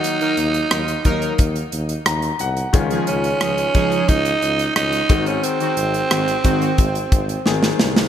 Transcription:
<<
  \new Staff \with { instrumentName = "Analog polysynth" } { \time 4/4 \key des \major \tempo 4 = 89 r16 <ges ees' bes'>16 r8 <ges ees' bes'>16 r16 <ges ees' bes'>8 r2 | r16 <f ees' aes'>16 r8 <f ees' aes'>16 r16 <f ees' aes'>8 r2 | r16 <ees c' ges'>16 r8 <ees c' ges'>16 r16 <ees c' ges'>8 r2 | }
  \new Staff \with { instrumentName = "Tenor saxophone" } { \time 4/4 \key des \major ees'2~ ees'8 r4. | r8 des'4. ees'4 ees'8. des'16 | c'2. r4 | }
  \new Staff \with { instrumentName = "Grand piano" } { \time 4/4 \key des \major r2. bes''8 ges''8 | r1 | r1 | }
  \new Staff \with { instrumentName = "Grand piano" } { \time 4/4 \key des \major <ees ges bes ges'>2.~ <ees ges bes ges'>8 r8 | <ees aes des' f'>2.~ <ees aes des' f'>8 <ees aes c' ges'>8~ | <ees aes c' ges'>2. <ees aes c' aes'>4 | }
  \new Staff \with { instrumentName = "Tuba" } { \clef bass \time 4/4 \key des \major r8 ees,8 ees,8 ees,8 ees,8 ees,8 ees,8 c,8 | des,8 des,8 des,8 des,8 des,8 des,8 des,8 aes,,8 | r8 aes,,8 aes,,8 aes,,8 aes,,8 aes,,8 aes,,8 c,8 | }
  \new DrumStaff \with { instrumentName = "Drums" } \drummode { \time 4/4 hh16 hh16 hh16 hh16 <hh ss>16 hh16 <hh bd>16 hh16 <hh bd>16 hh16 hh16 hh16 <hh ss>16 hh16 hh16 hh16 | <hh bd>16 hh16 hh16 hh16 <hh ss>16 hh16 <hh bd>16 hh16 <hh bd>16 hh16 hh16 hh16 <hh ss>16 hh16 <hh bd>16 hh16 | hh16 hh16 hh16 hh16 <hh ss>16 hh16 <hh bd>16 hh16 <hh bd>16 hh16 <hh bd>16 hh16 sn16 sn16 sn16 sn16 | }
>>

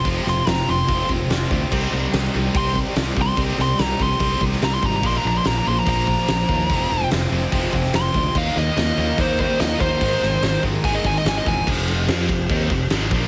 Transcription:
<<
  \new Staff \with { instrumentName = "Lead electric guitar" } { \time 4/4 \key f \dorian \tempo 4 = 145 r8 c'''8 bes''8 c'''4 r4. | r2 c'''8 r4 c'''8 | r8 c'''8 bes''8 c'''4 r8 bes''16 c'''16 bes''16 bes''16 | c'''16 bes''16 bes''16 c'''16 bes''16 bes''16 c'''16 bes''16 bes''2~ |
bes''4 r2 c'''4 | f''8 ees''4. c''8 c''8 ees''8 c''8~ | c''4. r8 aes''16 ees''16 aes''16 ees''16 aes''16 ees''16 aes''8 | r1 | }
  \new Staff \with { instrumentName = "Analog synth pad" } { \time 4/4 \key f \dorian << { <f' g''>1 | <c' d''>1~ | <c' d''>1 | <bes c''>1 |
g''1 | <ees' f''>1 | aes1 | <f g'>2.~ <f g'>8 <bes c''>8 | } \\ { c''1 | g'1~ | g'1 | f'1~ |
f'1 | bes'1~ | bes'1 | c'2.~ c'8 f'8 | } >> }
  \new Staff \with { instrumentName = "Distorted electric guitar" } { \clef bass \time 4/4 \key f \dorian <f, c f aes c' f'>8 <f, c f aes c' f'>8 <f, c f aes c' f'>8 <f, c f aes c' f'>8 <f, c f aes c' f'>8 <f, c f aes c' f'>8 <f, c f aes c' f'>8 <f, c f aes c' f'>8 | <c g c' ees'>8 <c g c' ees'>8 <c g c' ees'>8 <c g c' ees'>8 <c g c' ees'>8 <c g c' ees'>8 <c g c' ees'>8 <c g c' ees'>8 | <c g c' ees'>8 <c g c' ees'>8 <c g c' ees'>8 <c g c' ees'>8 <c g c' ees'>8 <c g c' ees'>8 <c g c' ees'>8 <c g c' ees'>8 | <bes, f bes d'>8 <bes, f bes d'>8 <bes, f bes d'>8 <bes, f bes d'>8 <bes, f bes d'>8 <bes, f bes d'>8 <bes, f bes d'>8 <bes, f bes d'>8 |
<f, c f aes c'>8 <f, c f aes c'>8 <f, c f aes c'>8 <f, c f aes c'>8 <f, c f aes c'>8 <f, c f aes c'>8 <f, c f aes c'>8 <f, c f aes c'>8 | <ees g bes ees'>8 <ees g bes ees'>8 <ees g bes ees'>8 <ees g bes ees'>8 <ees g bes ees'>8 <ees g bes ees'>8 <ees g bes ees'>8 <ees g bes ees'>8 | <aes, ees aes c' ees'>8 <aes, ees aes c' ees'>8 <aes, ees aes c' ees'>8 <aes, ees aes c' ees'>8 <aes, ees aes c' ees'>8 <aes, ees aes c' ees'>8 <aes, ees aes c' ees'>8 <aes, ees aes c' ees'>8 | r1 | }
  \new Staff \with { instrumentName = "Distorted electric guitar" } { \clef bass \time 4/4 \key f \dorian <f, c f>8 <f, c>8 <f, c>8 <f, c>8 <f, c f>8 <f, c>8 <f, c>8 <f, c>8 | <c g c'>8 <c g>8 <c g>8 <c g>8 <c g c'>8 <c g>8 <c g>8 <c g>8 | <c g c'>8 <c g>8 <c g>8 <c g>8 <c g c'>8 <c g>8 <c g>8 <c g>8 | <bes, f bes>8 <bes, f>8 <bes, f>8 <bes, f>8 <bes, f bes>8 <bes, f>8 <bes, f>8 <bes, f>8 |
<f, c f>8 <f, c>8 <f, c>8 <f, c>8 <f, c f>8 <f, c>8 <f, c>8 <f, c>8 | <ees bes ees'>8 <ees bes>8 <ees bes>8 <ees bes>8 <ees bes ees'>8 <ees bes>8 <ees bes>8 <ees bes>8 | <aes, ees aes>8 <aes, ees>8 <aes, ees>8 <aes, ees>8 <aes, ees aes>8 <aes, ees>8 <aes, ees>8 <aes, ees>8 | <f, c f>4 <f c' f'>8 <f, c>8 <ees bes ees'>8 <f, c>8 <aes, ees aes>8 <bes, f bes>8 | }
  \new Staff \with { instrumentName = "Fingered electric bass" } { \clef bass \time 4/4 \key f \dorian f,,8 f,,8 f,,8 f,,8 f,,8 f,,8 f,,8 d,8 | c,8 c,8 c,8 c,8 c,4 c,8 c,8 | c,8 c,8 c,8 c,8 c,8 c,8 c,8 aes,,8 | bes,,8 bes,,8 bes,,8 bes,,8 bes,,4 bes,,8 ees,8 |
f,,8 f,,8 f,,8 f,,8 f,,8 f,,8 f,,8 d,8 | ees,8 ees,8 ees,8 ees,8 ees,4 ees,8 ees,8 | aes,,8 aes,,8 aes,,8 aes,,8 aes,,8 aes,,8 aes,,8 e,,8 | f,,4 f,8 f,,8 ees,8 f,,8 aes,,8 bes,,8 | }
  \new DrumStaff \with { instrumentName = "Drums" } \drummode { \time 4/4 <hho bd>8 sn8 <hho sn>4 <hho bd>8 bd8 <hho sn>8 bd8 | <cymc bd>4 <hho sn>4 <hho bd>8 bd8 <hho sn>8 bd8 | <hho bd>8 sn8 <hho sn>8 bd8 <hho bd>8 bd16 sn16 <hho sn>8 bd8 | <cymc bd>4 <hho sn>4 <hho bd>8 bd16 sn16 <hho sn>8 bd8 |
<hho bd>4 <hho sn>4 <hho bd>8 bd16 sn16 <hho sn>8 bd8 | <cymc bd>8 sn8 <hho sn>4 <hho bd>8 bd8 <hho sn>8 bd8 | <hho bd>8 sn8 <hho sn>8 bd8 <hho bd>8 bd16 sn16 <hho sn>8 bd8 | <cymc bd>8 <cymc sn>8 <cymc sn>8 <cymc bd>8 <cymc bd>8 <cymc bd>8 <cymc sn>8 <cymc bd>8 | }
>>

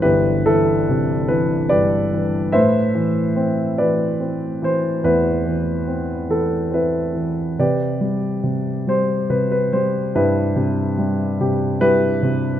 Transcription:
<<
  \new Staff \with { instrumentName = "Grand piano" } { \time 6/8 \key c \major \tempo 4. = 48 << { b'8 a'4 b'8 d''4 | e''4. d''4 c''8 | b'4. a'8 b'4 | d''4. c''8 b'16 b'16 c''8 |
b'4 r8 g'8 b'4 | } \\ { <e' g'>8 e'4. <g' b'>4 | <b' c''>4. b'4. | e'4. r8 e'4 | <g' b'>4. r4. |
<e' g'>4. r8 <e' g'>4 | } >> }
  \new Staff \with { instrumentName = "Grand piano" } { \clef bass \time 6/8 \key c \major <g,, g, e>8 e8 c8 e8 g,8 e8 | a,8 e8 c'8 e8 c'8 e8 | e,8 e8 c'8 e8 c'8 e8 | c8 g8 c8 g8 c8 g8 |
g,8 c8 g8 c8 g8 c8 | }
>>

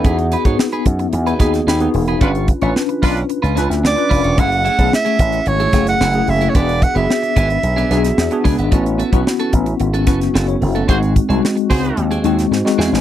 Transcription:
<<
  \new Staff \with { instrumentName = "Soprano saxophone" } { \time 4/4 \key e \major \tempo 4 = 111 r1 | r2. d''4 | fis''4 e''4 cis''8. fis''8. e''16. cis''32 | d''8 fis''16 e''2~ e''8. r8 |
r1 | r1 | }
  \new Staff \with { instrumentName = "Horn section" } { \time 4/4 \key e \major r1 | <d' f' b'>16 r4 r16 <d' f' b'>8 r2 | r1 | r1 |
r1 | <fis' gis' bis'>16 r4 r16 <fis' gis' bis'>8. r4. r16 | }
  \new Staff \with { instrumentName = "Clean electric guitar" } { \time 4/4 \key e \major <dis' gis' b'>8 <dis' gis' b'>16 <dis' gis' cis''>16 r16 <dis' gis' b'>8 r8 <dis' gis' b'>16 <dis' gis' b'>8 <dis' gis' b'>8 r16 <dis' gis' b'>16 | <cis' f' cis''>8 r16 <cis' f' cis''>16 r8 <cis' f' b'>8 r16 <cis' f' b'>16 <cis' f' b'>16 r8. <cis' f' b'>16 <cis' f' cis''>16 | <a e' gis'>8 <a e' gis'>16 <a e' a'>16 r16 <a e' gis'>8 r8 <a e' gis'>16 <a e' gis'>8 <a e' gis'>8 r16 <a e' gis'>16 | <b d' b'>8 r16 <b d' b'>16 r8 <b d' gis'>8 r16 <b d' gis'>16 <b d' gis'>16 r8. <b d' gis'>16 <b d' b'>16 |
<cis' fis' a'>8 <cis' fis' a'>16 <cis' fis' b'>16 r16 <cis' fis' a'>8 r8 <cis' fis' a'>16 <cis' fis' a'>8 <cis' fis' a'>8 r16 <cis' fis' a'>16 | <bis fis' gis'>8 r16 <bis fis' gis'>16 r8 <bis fis' gis'>8 r16 <bis fis' gis'>16 <bis fis' gis'>16 r8. <bis fis' gis'>16 <bis fis' gis'>16 | }
  \new Staff \with { instrumentName = "Tine electric piano" } { \time 4/4 \key e \major << { <cis' a'>16 r2. r8. | r1 | r1 | r1 |
r2. r16 <e' cis''>16 <cis' a'>16 <a fis'>16~ | <a fis'>16 r2. r8. | } \\ { <b dis' fis' gis'>8 r16 <b dis' fis' gis'>4 r8. <b dis' fis' gis'>8 r16 <b dis' fis' gis'>8 r16 | <cis' d' f' b'>8 r16 <cis' d' f' b'>4 r8. <cis' d' f' b'>8 r16 <cis' d' f' b'>8 r16 | <a cis' e' gis'>8 r16 <a cis' e' gis'>4 r8. <a cis' e' gis'>8 r16 <a cis' e' gis'>8 r16 | <b d' fis' gis'>8 r16 <b d' fis' gis'>4 r8. <b d' fis' gis'>8 r16 <b d' fis' gis'>8 r16 |
<b cis' e' fis'>8 r16 <b cis' e' fis'>4 r8. <b cis' e' fis'>8 r4 | <gis bis dis' fis'>8 r16 <gis bis dis' fis'>4 r8. <gis bis dis' fis'>8 r16 <gis bis dis' fis'>8 r16 | } >> }
  \new Staff \with { instrumentName = "Slap bass" } { \clef bass \time 4/4 \key e \major e,8. gis,16 r8 fis,8 e,8 dis,8 dis,8 e,,8 | g,,8. a,,16 r8 b,,8 r16 cis,16 cis,16 d,16 d,16 r16 f,,16 e,,16 | fis,,8. b,,16 r8 a,,8 gis,,8 fis,,8 fis,,8 fis,,8 | e,,8. fis,,16 r8 gis,,8 b,,8 b,,8 e,16 r16 cis,16 gis,,16 |
a,,8. b,,16 r8 a,,8 gis,,8 fis,,8 fis,,8 fis,,8 | gis,,8. bis,,16 r8 cis,8 dis,8 dis,8 gis,16 r16 e,16 a,,16 | }
  \new DrumStaff \with { instrumentName = "Drums" } \drummode { \time 4/4 <hh bd>16 hh16 hh16 <hh bd>16 sn16 hh16 <hh bd>16 hh16 hh16 hh16 <hh bd sn>16 <hh sn>16 sn16 hh16 hho16 hh16 | <hh bd>16 hh16 <hh bd>16 hh16 sn16 hh16 <hho bd>16 hh16 hh16 hh16 <hh sn>16 <hh sn>16 sn16 hh16 <hho bd>16 hh16 | <hh bd>16 hh16 hh16 <hh bd>16 sn16 hh16 <hh bd>16 hh16 hh16 hh16 <hh bd sn>16 <hh sn>16 sn16 hh16 hho16 hh16 | <hh bd>16 hh16 <hh bd>16 hh16 sn16 hh16 <hh bd>16 hh16 hh16 hh16 <hh sn>16 <hh sn>16 sn16 hh16 <hho bd>16 hh16 |
<hh bd>16 hh16 hh16 <hh bd>16 sn16 hh16 <hh bd>16 hh16 hh16 hh16 <hh bd sn>16 <hh sn>16 sn16 hh16 hho16 hh16 | <hh bd>16 hh16 <hh bd>16 hh16 sn16 hh16 <hho bd>16 hh16 hh16 hh16 hh16 <hh sn>16 sn16 sn16 sn16 sn16 | }
>>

